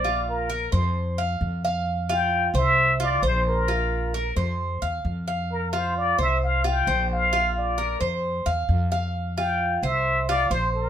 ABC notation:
X:1
M:4/4
L:1/8
Q:1/4=132
K:Bblyd
V:1 name="Muted trumpet"
d B2 z4 z | z g2 e2 d c B- | B3 z4 z | B c d e f g2 f- |
f d2 z4 z | z g2 e2 d c B |]
V:2 name="Cuban tres"
F2 B c2 f2 f- | f F2 c2 F c2 | F2 B c2 f2 f- | f F2 c2 F c2 |
F2 B c2 f2 f- | f F2 c2 F c2 |]
V:3 name="Upright bass" clef=bass
B,,,3 F,,3 F,,2- | F,,3 C,,3 B,,,2- | B,,,3 F,,2 E,, F,,2- | F,,3 C,,3 B,,,2- |
B,,,3 F,,2 E,, F,,2- | F,,3 C,,3 B,,,2 |]